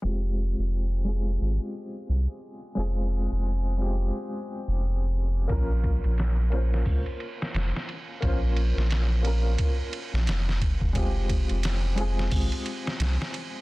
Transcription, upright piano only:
X:1
M:4/4
L:1/8
Q:"Swing 16ths" 1/4=88
K:Fm
V:1 name="Upright piano"
[A,CFG]3 [A,CFA]4- [A,CFA] | [A,CFA]3 [A,CFG]4- [A,CFG] | [B,DFB]3 [B,DFc]4- [B,DFc] | [B,DFc]3 [B,DFB]4- [B,DFB] |
[A,CFG]3 [A,CFA]4- [A,CFA] |]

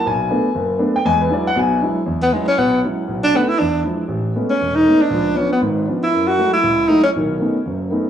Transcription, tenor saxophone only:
X:1
M:4/4
L:1/8
Q:"Swing" 1/4=237
K:Emix
V:1 name="Tenor saxophone"
z8 | z8 | [K:E] z B, G, C B,2 z2 | z =D B, E D2 z2 |
z3 C2 D2 =D- | =D2 C B, z3 E- | E F2 E3 D C | z8 |]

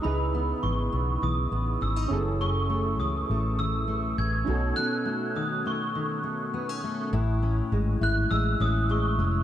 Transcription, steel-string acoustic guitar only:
X:1
M:4/4
L:1/16
Q:1/4=102
K:Alyd
V:1 name="Steel-string acoustic guitar"
[C,D]2 B,2 E,2 B,2 E,2 B,2 C D F,,2 | [F,,C]2 A,2 E,2 A,2 E,2 A,2 C2 B,,2 | [B,,C]2 A,2 D,2 A,2 D,2 A,2 B, C A,2 | [A,,E]2 C2 G,2 E2 G,2 C2 G,2 C2 |]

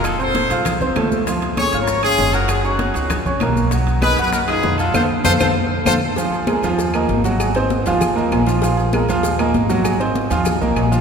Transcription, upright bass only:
X:1
M:4/4
L:1/8
Q:1/4=196
K:Bbm
V:1 name="Upright bass" clef=bass
F,,,3 C,,3 D,,2- | D,,3 A,,,3 G,,,2- | G,,,3 D,,2 C,, _C,,2- | _C,,3 ^F,,3 =F,,2 |
F,, z F,, F,, z2 F,, z | z3 E,,3 A,,,2- | A,,,3 E,,3 B,,,2- | B,,,3 E,,3 A,,,2- |
A,,,3 E,,2 C,, B,,,2 |]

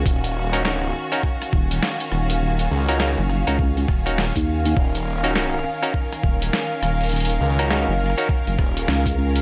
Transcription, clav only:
X:1
M:4/4
L:1/16
Q:"Swing 16ths" 1/4=102
K:Ebm
V:1 name="Clav"
z3 [DEGB] [DEGB] z2 [DEGB] z8 | z3 [DEGB] [DEGB] z2 [DEGB] z3 [DEGB] z4 | z3 [DEGB] [DEGB] z2 [DEGB] z8 | z3 [DEGB] [DEGB] z2 [DEGB] z8 |]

